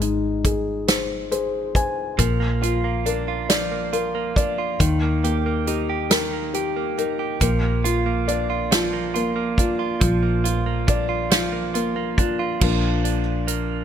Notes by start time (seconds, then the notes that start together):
Already playing: G#1 G#3
0.01 D#4, closed hi-hat
0.45 G#4, kick, closed hi-hat
0.88 C5, snare, closed hi-hat
1.31 G#4 C5, closed hi-hat
1.75 C5 G#5, kick, closed hi-hat
2.18 A#1 F3 A#3, kick, closed hi-hat
2.40 A#3
2.62 F4, closed hi-hat
2.84 A#3
3.06 D4 A#4, closed hi-hat
3.28 F4
3.49 F3 D5, snare, closed hi-hat
3.72 A#3
3.93 F4 A#4, closed hi-hat
4.15 A#3
4.36 D4 D5, kick, closed hi-hat
4.58 F4
4.80 D#2 D#3, kick, closed hi-hat
5.02 A#3
5.24 A#3 G4, closed hi-hat
5.46 A#3
5.67 D#4 G4, closed hi-hat
5.89 G4
6.10 D#3 A#4, snare, closed hi-hat
6.33 A#3
6.54 G4, closed hi-hat
6.76 A#3
6.98 D#4 A#4, closed hi-hat
7.19 G4
7.41 A#1 F3 A#3, kick, closed hi-hat
7.62 A#3
7.84 F4, closed hi-hat
8.06 A#3
8.28 D4 D5, closed hi-hat
8.50 F4
8.71 F3 F4, snare, closed hi-hat
8.93 A#3
9.14 A#3 F4, closed hi-hat
9.36 A#3
9.58 D4 F4, kick, closed hi-hat
9.79 F4
10.00 A#1 F3, kick, closed hi-hat
10.23 A#3
10.44 F4, closed hi-hat
10.66 A#3
10.87 D4 D5, kick, closed hi-hat
11.09 F4
11.31 F3 F4, snare, closed hi-hat
11.52 A#3
11.74 A#3 F4, closed hi-hat
11.96 A#3
12.18 D4 F4, kick, closed hi-hat
12.39 F4
12.61 A#1 F3 A#3 D4, kick, crash
13.04 D4, closed hi-hat
13.48 A#3, closed hi-hat